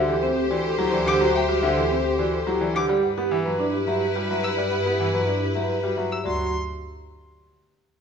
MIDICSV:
0, 0, Header, 1, 8, 480
1, 0, Start_track
1, 0, Tempo, 560748
1, 1036, Time_signature, 3, 2, 24, 8
1, 6852, End_track
2, 0, Start_track
2, 0, Title_t, "Violin"
2, 0, Program_c, 0, 40
2, 918, Note_on_c, 0, 86, 87
2, 1007, Note_off_c, 0, 86, 0
2, 1159, Note_on_c, 0, 79, 73
2, 1248, Note_off_c, 0, 79, 0
2, 2360, Note_on_c, 0, 86, 87
2, 2449, Note_off_c, 0, 86, 0
2, 3799, Note_on_c, 0, 88, 67
2, 3888, Note_off_c, 0, 88, 0
2, 5238, Note_on_c, 0, 88, 61
2, 5327, Note_off_c, 0, 88, 0
2, 5359, Note_on_c, 0, 84, 69
2, 5581, Note_off_c, 0, 84, 0
2, 6852, End_track
3, 0, Start_track
3, 0, Title_t, "Marimba"
3, 0, Program_c, 1, 12
3, 0, Note_on_c, 1, 76, 89
3, 76, Note_on_c, 1, 69, 67
3, 110, Note_off_c, 1, 76, 0
3, 189, Note_on_c, 1, 72, 80
3, 232, Note_off_c, 1, 69, 0
3, 311, Note_on_c, 1, 67, 94
3, 350, Note_off_c, 1, 72, 0
3, 428, Note_on_c, 1, 74, 77
3, 470, Note_off_c, 1, 67, 0
3, 589, Note_off_c, 1, 74, 0
3, 673, Note_on_c, 1, 67, 94
3, 793, Note_on_c, 1, 74, 73
3, 831, Note_off_c, 1, 67, 0
3, 915, Note_on_c, 1, 67, 76
3, 951, Note_off_c, 1, 74, 0
3, 1032, Note_on_c, 1, 72, 99
3, 1072, Note_off_c, 1, 67, 0
3, 1148, Note_on_c, 1, 76, 64
3, 1191, Note_off_c, 1, 72, 0
3, 1274, Note_on_c, 1, 67, 77
3, 1309, Note_off_c, 1, 76, 0
3, 1385, Note_on_c, 1, 76, 89
3, 1431, Note_off_c, 1, 67, 0
3, 1507, Note_on_c, 1, 69, 67
3, 1548, Note_off_c, 1, 76, 0
3, 1637, Note_on_c, 1, 72, 76
3, 1669, Note_off_c, 1, 69, 0
3, 1748, Note_on_c, 1, 67, 87
3, 1792, Note_off_c, 1, 72, 0
3, 1873, Note_on_c, 1, 74, 77
3, 1909, Note_off_c, 1, 67, 0
3, 1999, Note_on_c, 1, 69, 67
3, 2031, Note_off_c, 1, 74, 0
3, 2119, Note_on_c, 1, 67, 89
3, 2153, Note_off_c, 1, 69, 0
3, 2232, Note_on_c, 1, 74, 71
3, 2273, Note_off_c, 1, 67, 0
3, 2356, Note_on_c, 1, 67, 71
3, 2390, Note_off_c, 1, 74, 0
3, 2468, Note_on_c, 1, 74, 90
3, 2512, Note_off_c, 1, 67, 0
3, 2594, Note_on_c, 1, 78, 63
3, 2629, Note_off_c, 1, 74, 0
3, 2724, Note_on_c, 1, 67, 67
3, 2751, Note_off_c, 1, 78, 0
3, 2839, Note_on_c, 1, 78, 81
3, 2875, Note_off_c, 1, 67, 0
3, 2955, Note_on_c, 1, 71, 62
3, 2993, Note_off_c, 1, 78, 0
3, 3074, Note_on_c, 1, 74, 70
3, 3112, Note_off_c, 1, 71, 0
3, 3198, Note_on_c, 1, 67, 85
3, 3231, Note_off_c, 1, 74, 0
3, 3313, Note_on_c, 1, 76, 64
3, 3353, Note_off_c, 1, 67, 0
3, 3471, Note_off_c, 1, 76, 0
3, 3547, Note_on_c, 1, 67, 73
3, 3668, Note_on_c, 1, 76, 59
3, 3709, Note_off_c, 1, 67, 0
3, 3784, Note_on_c, 1, 67, 61
3, 3829, Note_off_c, 1, 76, 0
3, 3907, Note_on_c, 1, 74, 79
3, 3948, Note_off_c, 1, 67, 0
3, 4029, Note_on_c, 1, 78, 53
3, 4069, Note_off_c, 1, 74, 0
3, 4155, Note_on_c, 1, 67, 61
3, 4189, Note_off_c, 1, 78, 0
3, 4271, Note_on_c, 1, 78, 75
3, 4311, Note_off_c, 1, 67, 0
3, 4391, Note_on_c, 1, 71, 54
3, 4430, Note_off_c, 1, 78, 0
3, 4511, Note_on_c, 1, 74, 56
3, 4550, Note_off_c, 1, 71, 0
3, 4627, Note_on_c, 1, 67, 67
3, 4670, Note_off_c, 1, 74, 0
3, 4751, Note_on_c, 1, 76, 57
3, 4789, Note_off_c, 1, 67, 0
3, 4862, Note_on_c, 1, 71, 54
3, 4910, Note_off_c, 1, 76, 0
3, 4987, Note_on_c, 1, 67, 67
3, 5027, Note_off_c, 1, 71, 0
3, 5104, Note_on_c, 1, 76, 54
3, 5149, Note_off_c, 1, 67, 0
3, 5219, Note_on_c, 1, 67, 56
3, 5268, Note_off_c, 1, 76, 0
3, 5340, Note_on_c, 1, 74, 78
3, 5386, Note_off_c, 1, 67, 0
3, 5571, Note_off_c, 1, 74, 0
3, 6852, End_track
4, 0, Start_track
4, 0, Title_t, "Soprano saxophone"
4, 0, Program_c, 2, 64
4, 0, Note_on_c, 2, 72, 73
4, 2323, Note_off_c, 2, 72, 0
4, 2477, Note_on_c, 2, 71, 70
4, 5202, Note_off_c, 2, 71, 0
4, 6852, End_track
5, 0, Start_track
5, 0, Title_t, "Violin section"
5, 0, Program_c, 3, 48
5, 0, Note_on_c, 3, 67, 80
5, 0, Note_on_c, 3, 72, 77
5, 2322, Note_off_c, 3, 67, 0
5, 2322, Note_off_c, 3, 72, 0
5, 2480, Note_on_c, 3, 64, 73
5, 2480, Note_on_c, 3, 71, 72
5, 5204, Note_off_c, 3, 64, 0
5, 5204, Note_off_c, 3, 71, 0
5, 6852, End_track
6, 0, Start_track
6, 0, Title_t, "Vibraphone"
6, 0, Program_c, 4, 11
6, 79, Note_on_c, 4, 67, 74
6, 196, Note_on_c, 4, 60, 88
6, 233, Note_off_c, 4, 67, 0
6, 352, Note_off_c, 4, 60, 0
6, 437, Note_on_c, 4, 66, 70
6, 592, Note_off_c, 4, 66, 0
6, 675, Note_on_c, 4, 64, 73
6, 832, Note_off_c, 4, 64, 0
6, 919, Note_on_c, 4, 67, 89
6, 1040, Note_on_c, 4, 66, 76
6, 1073, Note_off_c, 4, 67, 0
6, 1193, Note_off_c, 4, 66, 0
6, 1277, Note_on_c, 4, 66, 89
6, 1432, Note_off_c, 4, 66, 0
6, 1517, Note_on_c, 4, 67, 68
6, 1639, Note_on_c, 4, 60, 87
6, 1672, Note_off_c, 4, 67, 0
6, 1793, Note_off_c, 4, 60, 0
6, 1877, Note_on_c, 4, 66, 71
6, 2032, Note_off_c, 4, 66, 0
6, 2116, Note_on_c, 4, 64, 71
6, 2272, Note_off_c, 4, 64, 0
6, 2360, Note_on_c, 4, 67, 84
6, 2469, Note_off_c, 4, 67, 0
6, 2479, Note_on_c, 4, 67, 68
6, 2633, Note_off_c, 4, 67, 0
6, 2719, Note_on_c, 4, 67, 80
6, 2873, Note_off_c, 4, 67, 0
6, 2959, Note_on_c, 4, 71, 65
6, 3079, Note_on_c, 4, 62, 80
6, 3113, Note_off_c, 4, 71, 0
6, 3233, Note_off_c, 4, 62, 0
6, 3320, Note_on_c, 4, 67, 68
6, 3473, Note_off_c, 4, 67, 0
6, 3561, Note_on_c, 4, 66, 64
6, 3714, Note_off_c, 4, 66, 0
6, 3922, Note_on_c, 4, 67, 60
6, 4074, Note_off_c, 4, 67, 0
6, 4164, Note_on_c, 4, 67, 74
6, 4315, Note_off_c, 4, 67, 0
6, 4404, Note_on_c, 4, 71, 57
6, 4526, Note_on_c, 4, 62, 65
6, 4555, Note_off_c, 4, 71, 0
6, 4675, Note_off_c, 4, 62, 0
6, 4763, Note_on_c, 4, 67, 57
6, 4915, Note_off_c, 4, 67, 0
6, 4999, Note_on_c, 4, 66, 59
6, 5153, Note_off_c, 4, 66, 0
6, 5359, Note_on_c, 4, 66, 69
6, 5581, Note_off_c, 4, 66, 0
6, 6852, End_track
7, 0, Start_track
7, 0, Title_t, "Grand piano"
7, 0, Program_c, 5, 0
7, 0, Note_on_c, 5, 50, 88
7, 71, Note_on_c, 5, 52, 65
7, 109, Note_off_c, 5, 50, 0
7, 230, Note_off_c, 5, 52, 0
7, 434, Note_on_c, 5, 52, 71
7, 591, Note_off_c, 5, 52, 0
7, 672, Note_on_c, 5, 54, 90
7, 794, Note_on_c, 5, 52, 80
7, 830, Note_off_c, 5, 54, 0
7, 911, Note_on_c, 5, 50, 81
7, 951, Note_off_c, 5, 52, 0
7, 1034, Note_on_c, 5, 54, 85
7, 1070, Note_off_c, 5, 50, 0
7, 1191, Note_off_c, 5, 54, 0
7, 1272, Note_on_c, 5, 55, 72
7, 1396, Note_on_c, 5, 50, 94
7, 1431, Note_off_c, 5, 55, 0
7, 1515, Note_on_c, 5, 52, 68
7, 1552, Note_off_c, 5, 50, 0
7, 1672, Note_off_c, 5, 52, 0
7, 1873, Note_on_c, 5, 52, 69
7, 2031, Note_off_c, 5, 52, 0
7, 2111, Note_on_c, 5, 54, 80
7, 2232, Note_on_c, 5, 52, 75
7, 2270, Note_off_c, 5, 54, 0
7, 2352, Note_on_c, 5, 50, 74
7, 2391, Note_off_c, 5, 52, 0
7, 2474, Note_on_c, 5, 55, 84
7, 2511, Note_off_c, 5, 50, 0
7, 2631, Note_off_c, 5, 55, 0
7, 2719, Note_on_c, 5, 59, 69
7, 2836, Note_on_c, 5, 52, 87
7, 2873, Note_off_c, 5, 59, 0
7, 2959, Note_on_c, 5, 54, 61
7, 2992, Note_off_c, 5, 52, 0
7, 3113, Note_off_c, 5, 54, 0
7, 3316, Note_on_c, 5, 54, 62
7, 3472, Note_off_c, 5, 54, 0
7, 3558, Note_on_c, 5, 55, 73
7, 3683, Note_on_c, 5, 54, 65
7, 3713, Note_off_c, 5, 55, 0
7, 3835, Note_off_c, 5, 54, 0
7, 3919, Note_on_c, 5, 55, 69
7, 4073, Note_off_c, 5, 55, 0
7, 4161, Note_on_c, 5, 59, 57
7, 4277, Note_on_c, 5, 52, 70
7, 4314, Note_off_c, 5, 59, 0
7, 4396, Note_on_c, 5, 54, 53
7, 4432, Note_off_c, 5, 52, 0
7, 4552, Note_off_c, 5, 54, 0
7, 4754, Note_on_c, 5, 54, 52
7, 4911, Note_off_c, 5, 54, 0
7, 4994, Note_on_c, 5, 55, 66
7, 5113, Note_on_c, 5, 54, 62
7, 5151, Note_off_c, 5, 55, 0
7, 5271, Note_off_c, 5, 54, 0
7, 5351, Note_on_c, 5, 54, 65
7, 5577, Note_off_c, 5, 54, 0
7, 6852, End_track
8, 0, Start_track
8, 0, Title_t, "Double bass section"
8, 0, Program_c, 6, 48
8, 0, Note_on_c, 6, 38, 70
8, 2348, Note_off_c, 6, 38, 0
8, 2480, Note_on_c, 6, 43, 73
8, 5228, Note_off_c, 6, 43, 0
8, 5362, Note_on_c, 6, 38, 58
8, 5582, Note_off_c, 6, 38, 0
8, 6852, End_track
0, 0, End_of_file